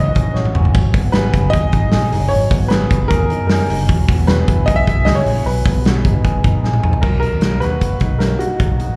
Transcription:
Already playing: C#2 E3 A#3 C#4 D#5
0.06 F#4
0.15 A#1 C#4, kick, hi-hat pedal, open hi-hat
0.34 F#4 C#5, snare
0.45 high tom
0.55 F#1 C#4, mid tom
0.65 floor tom
0.74 G#1 F#3, kick, splash
0.94 G#1 B3, kick, hi-hat pedal, open hi-hat
1.12 G#4 B4, snare, hi-hat pedal, open hi-hat
1.33 F#1 C#4, kick, snare, hi-hat pedal, open hi-hat
1.44 D#4
1.50 D#2 G#4 D#5, kick, hi-hat pedal, open hi-hat
1.72 G#1 D#4, kick, hi-hat pedal, open hi-hat
1.92 A#1 G#4, snare, hi-hat pedal, open hi-hat
2.12 F#1 D#4, hi-hat pedal, open hi-hat
2.29 G#1 F#3 C#5, hi-hat pedal, open hi-hat
2.51 G#1 B3, kick, hi-hat pedal, open hi-hat
2.68 G#4 B4, snare, hi-hat pedal, open hi-hat
2.90 F#1 C#4, kick, hi-hat pedal, open hi-hat
3.00 D#4
3.08 D#2 G#4 A#4, kick, hi-hat pedal, open hi-hat
3.30 F#2 D#4, hi-hat pedal, open hi-hat
3.47 G#4 A#4, snare, hi-hat pedal, open hi-hat
3.70 F#1 D#4, hi-hat pedal, open hi-hat
3.89 E1 F#3, kick, hi-hat pedal, open hi-hat
4.09 E1 B3, kick, hi-hat pedal, open hi-hat
4.27 F#4 B4, snare, hi-hat pedal, open hi-hat
4.39 G#4
4.48 E1 E4, kick, hi-hat pedal, open hi-hat
4.66 B1 G#4 D#5, kick, hi-hat pedal, open hi-hat
4.76 E5
4.87 B1 E4, kick, hi-hat pedal, open hi-hat
5.05 C#2 G#4 D#5, snare, hi-hat pedal, open hi-hat
5.15 C#5
5.26 A#1 E4, hi-hat pedal, open hi-hat
5.45 B1 F#3 B4, hi-hat pedal, open hi-hat
5.65 B1 B3, kick, hi-hat pedal, open hi-hat
5.85 F#4, snare, hi-hat pedal, open hi-hat
5.96 G#4
6.05 G#1 D#4, kick, hi-hat pedal, open hi-hat
6.24 F#1 G#4, kick, hi-hat pedal, open hi-hat
6.44 A#1 D#4, kick, hi-hat pedal, open hi-hat
6.64 G#4, snare
6.74 high tom
6.83 A#1 D#4, mid tom
6.93 floor tom
7.01 B1 F#3 A#4, kick, crash
7.20 D#4 A#4, closed hi-hat
7.32 D#2
7.41 B1 A#3, snare, closed hi-hat
7.60 D#2 F#4 B4, snare, closed hi-hat
7.81 kick, closed hi-hat
8.00 B1 D#4, kick, closed hi-hat
8.19 A#3 A#4, snare, closed hi-hat
8.39 D#4 F#4, closed hi-hat
8.60 B1 F#3, kick, closed hi-hat
8.80 D#4, closed hi-hat
8.89 A#1

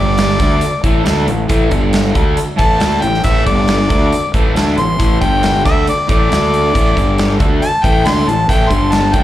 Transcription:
Already playing: G1 G2 D3 G3 D5
0.18 snare, closed hi-hat
0.39 D2 D3 A3 D4, kick, closed hi-hat
0.61 closed hi-hat
0.83 A1 A2 E3 A3, kick, closed hi-hat
1.04 D2 D3 A3 D4, snare, closed hi-hat
1.27 A1 A2 E3, closed hi-hat
1.48 A1 A2 E3 A3, kick, closed hi-hat
1.70 G1 G2 D3 G3, kick, closed hi-hat
1.93 snare, closed hi-hat
2.14 D2 D3 A3 D4, kick, closed hi-hat
2.37 closed hi-hat
2.57 A1 A2 E3 A3 A5, kick, closed hi-hat
2.80 D2 D3 A3 D4, snare, closed hi-hat
3.01 A1 A2 E3 G5, closed hi-hat
3.14 snare
3.23 A1 A2 E3 A3 E5, kick, closed hi-hat
3.45 G1 G2 D3 G3 D5, kick, closed hi-hat
3.68 snare, closed hi-hat
3.89 D2 D3 A3 D4, kick, closed hi-hat
4.12 closed hi-hat
4.34 A1 A2 E3 A3, kick, closed hi-hat
4.55 D2 D3 A3 D4, snare, closed hi-hat
4.76 A1 A2 E3 C6, closed hi-hat
4.99 A1 A2 E3 A3, kick, closed hi-hat
5.21 G1 G2 D3 G3 G5, kick, closed hi-hat
5.43 snare, closed hi-hat
5.65 D2 D3 A3 D4 E5, kick, closed hi-hat
5.87 D5, closed hi-hat
6.08 A1 A2 E3 A3 D5, kick, closed hi-hat
6.30 D2 D3 A3 D4, snare, closed hi-hat
6.54 closed hi-hat
6.74 A1 A2 E3 A3, kick, closed hi-hat
6.96 G1 G2 D3 G3, kick, closed hi-hat
7.18 snare, closed hi-hat
7.39 D2 D3 A3 D4, kick, closed hi-hat
7.61 A5, closed hi-hat
7.83 A1 A2 E3 A3 G5, kick, closed hi-hat
8.05 D2 D3 A3 D4 C6, snare, closed hi-hat
8.26 A1 A2 E3 A5, closed hi-hat
8.49 A1 A2 E3 A3 G5, kick, closed hi-hat
8.70 G1 G2 D3 G3 C6, kick, closed hi-hat
8.92 A5, snare, closed hi-hat
9.13 D2 D3 A3 D4 G5, kick, closed hi-hat

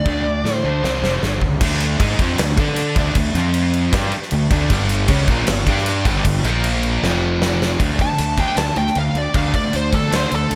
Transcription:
Already playing: D5
0.05 D2 D3 A3 D4, kick
0.26 D3 A3
0.44 A2 D3 A3, snare
0.56 C5
0.64 D2 D3 A3 D4
0.84 C2 C3 G3 C4, snare
1.02 F1 C3 G3 C4, snare
1.22 G1 G2 D3 G3, snare
1.41 C#2 G2 D3, kick
1.61 D2 D3 A3 D4, kick, crash
1.80 crash
1.99 G#2 G#3 D#4 G#4, kick, crash
2.19 F2 F3 C4 F4, kick, crash
2.38 D2 D3 A3, snare, crash
2.58 D3 D4 A4 D5, kick, crash
2.76 crash
2.96 D2 D3 A3 D4, kick, crash
3.15 D2 D3 A3, kick, crash
3.34 F2 F3 C4, crash
3.38 F4
3.54 crash
3.74 crash
3.93 G2 G3 D4 G4, kick, snare, crash
4.12 crash
4.23 snare
4.31 D2 D3 A3, crash
4.51 D2 D3 A3 D4, kick, crash
4.70 G1 G2 D3 G3, kick, crash
4.89 crash
5.08 C#2 C#3 G#3 C#4, kick, crash
5.28 A#1 A#2 F3 A#3, kick, crash
5.47 G1 G2 D3, snare, crash
5.67 G2 G3 D4 G4, kick, crash
5.78 snare
5.86 crash
6.05 G1 G2 D3 G3, kick, crash
6.25 G1 G2 D3, kick, crash
6.44 A#1 A#2 F3 A#3, crash
6.64 crash
6.83 crash
7.03 F1 F2 C3 F3, snare
7.42 snare
7.62 snare
7.80 D2 D3 A3 D4, kick, crash
7.99 D3 A3 A5, kick, crash
8.18 D2 D3 A3, crash
8.37 D3 A3 D4 G5, kick, crash
8.57 D2 D3 A3 A5, snare, crash
8.76 D2 D3 A3 G5, crash
8.87 snare
8.95 D2 D3 A3 F5, crash
9.14 D2 D3 A3, crash
9.18 D5
9.34 D2 D3 A3 D4 F5, kick, crash
9.54 D3 A3 D5, kick, crash
9.73 D2 D3 A3 C5, crash
9.93 D3 A3 A4, kick, crash
10.11 D2 D3 A3 D4, snare, crash
10.16 C5
10.31 D2 D3 A3 A4, crash
10.51 D2 D3 A3, crash

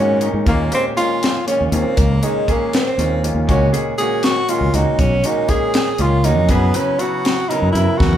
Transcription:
Already playing: G#2 A#2 D#3 G#3 C#4
0.00 F#4
0.20 A#2 D#3 G#3 C#4 D#4, closed hi-hat
0.34 G#2
0.46 D#2 A#2 D#3 G#3 A#3 C#4 F4, kick, closed hi-hat
0.71 A#2 D#3 G#3 C4 C#4 G4, closed hi-hat
0.96 A#2 D#3 G#3 C#4 F4, closed hi-hat
1.23 snare, closed hi-hat
1.46 A#2 D#3 G#3 C#4 F4, closed hi-hat
1.61 D#2
1.65 C#4
1.72 D#2 A#2 D#3 G#3 C4 C#4 F4, closed hi-hat
1.97 C#2 A#3, kick, closed hi-hat
2.22 A#2 D#3 G#3 C#4 D#4, closed hi-hat
2.47 A#2 D#3 G#3 C#4 G#4, kick, closed hi-hat
2.52 A#3
2.73 C4, snare, closed hi-hat
2.97 D#2 A#2 D#3 G#3 C#4 F4, closed hi-hat
3.23 A#2 D#3 G#3 C#4 F4, closed hi-hat
3.35 D#2
3.47 C#2 A#2 D#3 G#3 C#4 F#4, kick, closed hi-hat
3.71 A#2 D#3 G#3 C#4 G#4, closed hi-hat
3.98 A#2 D#3 G#3 C#4 F#4 G#4, closed hi-hat
4.23 F#4, snare, closed hi-hat
4.48 A#2 D#3 G#3 C#4 F4 F#4, closed hi-hat
4.61 C#2
4.73 C#2 A#2 D#3 G#3 C#4 D#4 F#4, closed hi-hat
4.99 B1 C#4, kick, closed hi-hat
5.23 A#2 D#3 G#3 C#4 D#4 F#4, closed hi-hat
5.47 A#2 D#3 G#3 C#4 G#4, kick, closed hi-hat
5.74 snare, closed hi-hat
5.98 C#2 A#2 D#3 G#3 C#4 F4, closed hi-hat
6.24 A#2 D#3 G#3 C#4 D#4 F#4, closed hi-hat
6.36 F2
6.49 F#2 C#3 F#3 B3 E4 G#4, kick, closed hi-hat
6.73 C#3 F#3 B3 C#4 E4 B4, closed hi-hat
6.98 C#3 F#3 B3 E4 F#4, closed hi-hat
7.25 snare, closed hi-hat
7.49 C#3 F#3 B3 D#4 E4 A#4, closed hi-hat
7.62 F#2
7.72 F#2 C#3 F#3 B3 E4, closed hi-hat
7.76 A#4
7.98 E2 F#4, kick, snare
8.13 high tom

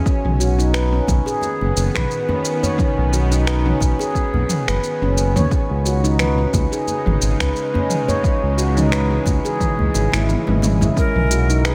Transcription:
Already playing: F#4
0.06 D#3 B3 C#4, kick, shaker
0.24 B1, mid tom
0.40 F#4, djembe slap, shaker
0.59 D#4, shaker
0.74 B4, finger snap, shaker
0.93 C#4
1.07 B1, kick, mid tom, djembe slap, djembe tone, djembe bass, shaker
1.26 G#4, djembe slap, shaker
1.41 djembe tone, shaker
1.61 F#1, djembe tone
1.77 F#1, shaker
1.95 B1 B4, finger snap, kick, mid tom, shaker
2.11 shaker
2.28 C#4, djembe tone, djembe bass
2.45 shaker
2.63 C#5, djembe bass, shaker
2.78 C#4, kick, mid tom, shaker
2.98 B1
3.13 F#4, djembe slap, shaker
3.31 D#4, shaker
3.47 B4, finger snap, shaker
3.66 C#4, mid tom
3.80 B1, kick, djembe slap, djembe tone, shaker
3.99 G#4, djembe slap, shaker
4.15 kick, shaker
4.33 B1, djembe bass
4.49 mid tom, djembe slap, shaker
4.68 F#1 B4, finger snap, djembe tone, shaker
4.84 shaker
5.02 F#1 C#4, djembe tone
5.18 djembe slap, shaker
5.36 D#2 C#5, mid tom, djembe tone, djembe bass, shaker
5.51 C#3 G#3 C#4 D#4, kick, shaker
5.70 C#2
5.85 F#4, djembe slap, shaker
6.04 D#4, shaker
6.19 B4, finger snap, mid tom, shaker
6.38 C#4
6.53 C#2, kick, djembe slap, djembe tone, djembe bass, shaker
6.72 G#4, djembe slap, shaker
6.87 djembe tone, shaker
7.06 G#1, mid tom, djembe tone
7.22 G#1, shaker
7.40 C#2 B4, finger snap, kick, shaker
7.56 shaker
7.74 C#4, djembe tone, djembe bass
7.90 mid tom, shaker
8.08 C#5, djembe bass, shaker
8.23 E3 C#4, kick, shaker
8.43 C#2
8.58 F#4, djembe slap, shaker
8.77 D#4, mid tom, shaker
8.92 B4, finger snap, shaker
9.11 C#4
9.26 C#2, kick, djembe slap, djembe tone, djembe bass, shaker
9.45 G#4, djembe slap, shaker
9.60 kick, mid tom, shaker
9.79 C#2, djembe bass
9.94 G#1, djembe slap, shaker
10.12 G#1 E4, finger snap, djembe tone, shaker
10.29 high tom, shaker
10.47 G#1 G#3, mid tom, high tom, djembe tone
10.62 C#4, mid tom, djembe slap, shaker
10.81 E4, mid tom, djembe tone, djembe bass, shaker
10.96 D#3 B3 C#4 A#4, kick, shaker
11.16 B1, mid tom
11.31 F#4, open hi-hat, shaker
11.50 D#4, shaker
11.65 G#4 B4, finger snap, shaker

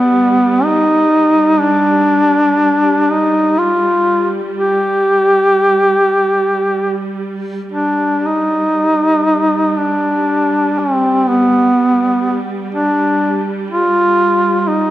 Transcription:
Already playing: G3 B3
0.64 D#4
1.60 D4
3.10 D#4
3.59 F4
4.56 G4
7.71 G3 D4
8.27 D#4
9.77 D4
10.79 C4
11.28 B3
12.75 D4
13.71 F4
14.60 F4
14.68 D#4

